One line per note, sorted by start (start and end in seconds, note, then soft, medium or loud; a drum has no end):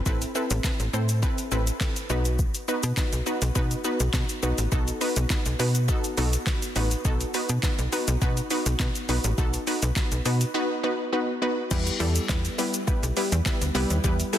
0.06 0.25 A1 loud
0.06 0.27 C4 loud
0.06 0.27 E4 loud
0.06 0.27 A4 loud
0.06 0.27 B4 loud
0.06 kick loud
0.06 shaker medium
0.22 closed hi-hat medium
0.22 shaker medium
0.35 0.56 C4 medium
0.35 0.56 E4 medium
0.35 0.56 A4 medium
0.35 0.56 B4 medium
0.35 shaker soft
0.51 0.60 A1 loud
0.51 closed hi-hat medium
0.51 shaker medium
0.64 0.85 C4 medium
0.64 0.85 E4 medium
0.64 0.85 A4 medium
0.64 0.85 B4 loud
0.64 kick loud
0.64 snare loud
0.64 clap loud
0.64 shaker medium
0.80 0.89 A1 loud
0.80 closed hi-hat soft
0.80 shaker soft
0.93 1.23 A2 loud
0.93 1.14 C4 medium
0.93 1.14 E4 medium
0.93 1.15 A4 medium
0.93 1.15 C5 loud
0.93 shaker medium
1.09 closed hi-hat medium
1.09 shaker medium
1.22 1.43 C4 loud
1.22 1.44 E4 loud
1.22 1.44 A4 loud
1.22 1.44 B4 loud
1.22 kick loud
1.22 shaker medium
1.38 closed hi-hat medium
1.38 shaker medium
1.51 1.71 A1 medium
1.51 1.73 C4 medium
1.51 1.73 E4 medium
1.51 1.73 A4 medium
1.51 1.73 B4 loud
1.51 shaker soft
1.67 closed hi-hat medium
1.67 shaker medium
1.81 2.02 C4 medium
1.81 2.02 E4 medium
1.81 2.02 A4 medium
1.81 2.02 B4 medium
1.81 kick loud
1.81 snare loud
1.81 clap loud
1.81 shaker medium
1.96 closed hi-hat medium
1.96 shaker medium
2.10 2.48 B1 loud
2.10 2.57 B3 medium
2.10 2.57 D#4 medium
2.10 2.57 F#4 medium
2.10 2.57 B4 loud
2.10 shaker soft
2.25 closed hi-hat medium
2.25 shaker medium
2.39 kick loud
2.39 shaker medium
2.54 closed hi-hat medium
2.54 shaker medium
2.68 2.89 B3 medium
2.68 2.89 D#4 medium
2.68 2.89 F#4 medium
2.68 2.89 B4 medium
2.68 shaker soft
2.83 2.93 B2 loud
2.83 closed hi-hat medium
2.83 shaker medium
2.97 3.18 B3 medium
2.97 3.18 D#4 medium
2.97 3.18 F#4 medium
2.97 3.18 B4 loud
2.97 kick loud
2.97 snare medium
2.97 clap loud
2.97 shaker medium
3.13 3.22 B1 medium
3.13 closed hi-hat medium
3.13 shaker soft
3.26 3.47 B3 medium
3.26 3.47 D#4 medium
3.26 3.47 F#4 medium
3.26 3.47 B4 medium
3.26 shaker medium
3.42 3.51 B1 medium
3.42 closed hi-hat medium
3.42 shaker medium
3.55 3.75 B2 loud
3.55 3.76 B3 loud
3.55 3.76 D#4 loud
3.55 3.77 F#4 loud
3.55 3.77 B4 loud
3.55 kick loud
3.55 shaker medium
3.71 closed hi-hat medium
3.71 shaker medium
3.84 4.06 B3 medium
3.84 4.06 D#4 medium
3.84 4.06 F#4 medium
3.84 4.06 B4 loud
3.84 shaker soft
4.00 4.09 B1 medium
4.00 closed hi-hat medium
4.00 shaker medium
4.14 4.24 B2 loud
4.14 4.35 B3 medium
4.14 4.35 D#4 medium
4.14 4.35 F#4 medium
4.14 4.35 B4 medium
4.14 kick loud
4.14 snare loud
4.14 clap loud
4.14 shaker medium
4.29 closed hi-hat medium
4.29 shaker medium
4.43 4.53 B1 loud
4.43 4.64 B3 medium
4.43 4.64 D#4 medium
4.43 4.64 F#4 medium
4.43 4.64 B4 loud
4.43 shaker medium
4.58 4.67 A1 medium
4.58 closed hi-hat medium
4.58 shaker medium
4.72 4.91 B1 loud
4.72 4.93 B3 loud
4.72 4.93 D#4 loud
4.72 4.93 F#4 loud
4.72 4.93 A4 loud
4.72 kick loud
4.72 shaker medium
4.88 closed hi-hat medium
4.88 shaker medium
5.01 5.22 B3 medium
5.01 5.22 D#4 medium
5.01 5.22 F#4 medium
5.01 5.22 B4 loud
5.01 open hi-hat medium
5.01 shaker soft
5.16 5.26 B1 medium
5.16 closed hi-hat medium
5.16 shaker medium
5.30 5.51 B3 medium
5.30 5.51 D#4 medium
5.30 5.51 F#4 medium
5.30 5.51 B4 loud
5.30 kick loud
5.30 snare loud
5.30 clap loud
5.30 shaker medium
5.46 5.55 B1 loud
5.46 closed hi-hat soft
5.46 shaker soft
5.59 5.89 B2 loud
5.59 5.80 B3 medium
5.59 5.80 D#4 medium
5.59 5.80 F#4 medium
5.59 5.81 B4 loud
5.59 open hi-hat medium
5.59 shaker medium
5.75 closed hi-hat medium
5.75 shaker medium
5.88 6.09 B3 loud
5.88 6.09 D#4 loud
5.88 6.10 F#4 loud
5.88 6.10 A4 loud
5.88 kick loud
5.88 shaker medium
6.04 closed hi-hat medium
6.04 shaker medium
6.17 6.37 B1 medium
6.17 6.39 B3 medium
6.17 6.39 D#4 medium
6.17 6.39 F#4 medium
6.17 6.39 A4 loud
6.17 open hi-hat medium
6.17 shaker soft
6.33 closed hi-hat medium
6.33 shaker medium
6.47 6.68 B3 medium
6.47 6.68 D#4 medium
6.47 6.68 F#4 medium
6.47 6.68 B4 medium
6.47 kick loud
6.47 snare loud
6.47 clap loud
6.47 shaker medium
6.62 closed hi-hat medium
6.62 shaker medium
6.76 6.95 A1 loud
6.76 6.97 B3 medium
6.76 6.97 D#4 medium
6.76 6.97 F#4 medium
6.76 6.97 B4 loud
6.76 open hi-hat medium
6.76 shaker soft
6.91 closed hi-hat medium
6.91 shaker medium
7.05 7.24 B1 loud
7.05 7.26 B3 loud
7.05 7.26 D#4 loud
7.05 7.26 F#4 loud
7.05 7.26 A4 loud
7.05 kick loud
7.05 shaker medium
7.21 closed hi-hat medium
7.21 shaker medium
7.34 7.55 B3 medium
7.34 7.55 D#4 medium
7.34 7.55 F#4 medium
7.34 7.55 B4 medium
7.34 open hi-hat medium
7.34 shaker soft
7.49 7.59 B2 loud
7.49 closed hi-hat medium
7.49 shaker medium
7.63 7.84 B3 medium
7.63 7.84 D#4 medium
7.63 7.84 F#4 medium
7.63 7.85 B4 loud
7.63 kick loud
7.63 snare medium
7.63 clap loud
7.63 shaker medium
7.79 7.88 B1 loud
7.79 closed hi-hat soft
7.79 shaker soft
7.92 8.13 B3 medium
7.92 8.13 D#4 medium
7.92 8.14 F#4 medium
7.92 8.14 B4 medium
7.92 open hi-hat medium
7.92 shaker medium
8.08 8.17 B1 loud
8.08 closed hi-hat medium
8.08 shaker medium
8.21 8.41 B2 loud
8.21 8.43 B3 loud
8.21 8.43 D#4 loud
8.21 8.43 F#4 loud
8.21 8.43 B4 loud
8.21 kick loud
8.21 shaker medium
8.37 closed hi-hat medium
8.37 shaker medium
8.50 8.72 B3 medium
8.50 8.72 D#4 medium
8.50 8.72 F#4 medium
8.50 8.72 B4 loud
8.50 open hi-hat medium
8.50 shaker soft
8.66 8.75 B1 medium
8.66 closed hi-hat medium
8.66 shaker medium
8.80 8.90 B2 loud
8.80 9.01 B3 medium
8.80 9.01 D#4 medium
8.80 9.01 F#4 medium
8.80 9.01 B4 medium
8.80 kick loud
8.80 snare loud
8.80 clap loud
8.80 shaker medium
8.95 closed hi-hat medium
8.95 shaker medium
9.09 9.19 B1 medium
9.09 9.30 B3 medium
9.09 9.30 D#4 medium
9.09 9.30 F#4 medium
9.09 9.30 B4 loud
9.09 open hi-hat medium
9.09 shaker soft
9.24 9.33 A1 loud
9.24 closed hi-hat medium
9.24 shaker medium
9.38 9.57 B1 loud
9.38 9.59 B3 loud
9.38 9.59 D#4 loud
9.38 9.59 F#4 loud
9.38 9.59 A4 loud
9.38 kick loud
9.38 shaker medium
9.54 closed hi-hat medium
9.54 shaker medium
9.67 9.88 B3 medium
9.67 9.88 D#4 medium
9.67 9.88 F#4 medium
9.67 9.88 B4 medium
9.67 open hi-hat medium
9.67 shaker soft
9.82 9.92 B1 loud
9.82 closed hi-hat medium
9.82 shaker medium
9.96 10.17 B3 medium
9.96 10.17 D#4 medium
9.96 10.17 F#4 medium
9.96 10.18 B4 loud
9.96 kick loud
9.96 snare loud
9.96 clap loud
9.96 shaker medium
10.12 10.21 B1 medium
10.12 closed hi-hat soft
10.12 shaker soft
10.25 10.45 B2 loud
10.25 10.46 B3 medium
10.25 10.46 D#4 medium
10.25 10.47 F#4 medium
10.25 10.47 B4 medium
10.25 open hi-hat medium
10.25 shaker medium
10.41 closed hi-hat medium
10.41 shaker medium
10.54 10.75 B3 loud
10.54 10.76 D#4 loud
10.54 10.76 F#4 loud
10.54 10.76 B4 loud
10.83 11.05 B3 medium
10.83 11.05 D#4 medium
10.83 11.05 F#4 medium
10.83 11.05 B4 loud
11.13 11.34 B3 medium
11.13 11.34 D#4 medium
11.13 11.34 F#4 medium
11.13 11.34 B4 medium
11.42 11.63 B3 medium
11.42 11.63 D#4 medium
11.42 11.63 F#4 medium
11.42 11.63 B4 loud
11.71 11.90 E2 loud
11.71 11.92 G3 loud
11.71 11.92 B3 loud
11.71 11.92 E4 loud
11.71 11.92 G4 loud
11.71 11.92 B4 loud
11.71 kick loud
11.71 crash loud
11.71 shaker medium
11.87 closed hi-hat medium
11.87 shaker medium
12.00 12.19 E2 loud
12.00 12.21 G3 medium
12.00 12.21 B3 medium
12.00 12.21 E4 medium
12.00 12.21 G4 medium
12.00 12.21 A4 loud
12.00 open hi-hat medium
12.00 shaker soft
12.16 closed hi-hat medium
12.16 shaker medium
12.29 12.49 E2 loud
12.29 12.50 G3 medium
12.29 12.50 B3 medium
12.29 12.50 E4 medium
12.29 12.50 G4 medium
12.29 12.50 B4 loud
12.29 kick loud
12.29 snare medium
12.29 clap loud
12.29 shaker medium
12.45 closed hi-hat medium
12.45 shaker soft
12.58 12.79 G3 medium
12.58 12.79 B3 medium
12.58 12.79 E4 medium
12.58 12.80 G4 medium
12.58 12.80 B4 loud
12.58 open hi-hat medium
12.58 shaker medium
12.74 closed hi-hat medium
12.74 shaker medium
12.87 13.08 G3 medium
12.87 13.09 B3 medium
12.87 13.09 E4 medium
12.87 13.09 G4 medium
12.87 13.09 B4 loud
12.87 kick loud
12.87 shaker medium
13.03 13.12 B1 medium
13.03 closed hi-hat medium
13.03 shaker medium
13.17 13.38 G3 medium
13.17 13.38 B3 medium
13.17 13.38 E4 medium
13.17 13.38 G4 medium
13.17 13.38 B4 loud
13.17 open hi-hat medium
13.17 shaker soft
13.32 13.41 E2 loud
13.32 closed hi-hat medium
13.32 shaker medium
13.46 13.67 G3 loud
13.46 13.67 B3 loud
13.46 13.67 E4 loud
13.46 13.67 G4 loud
13.46 13.67 B4 loud
13.46 kick loud
13.46 snare loud
13.46 clap loud
13.46 shaker medium
13.61 13.70 D2 medium
13.61 closed hi-hat medium
13.61 shaker medium
13.75 13.85 C2 loud
13.75 13.96 G3 loud
13.75 13.96 B3 loud
13.75 13.96 E4 loud
13.75 13.96 G4 loud
13.75 13.96 B4 loud
13.75 open hi-hat medium
13.75 shaker soft
13.90 13.99 D#2 medium
13.90 closed hi-hat medium
13.90 shaker medium
14.04 14.23 E2 loud
14.04 14.25 G3 loud
14.04 14.25 B3 loud
14.04 14.25 E4 loud
14.04 14.25 G4 loud
14.04 14.25 B4 loud
14.04 kick loud
14.04 shaker medium
14.20 closed hi-hat medium
14.20 shaker medium
14.33 14.38 G3 medium
14.33 14.38 B3 medium
14.33 14.38 E4 medium
14.33 14.38 G4 medium
14.33 14.38 A4 medium
14.33 open hi-hat medium
14.33 shaker soft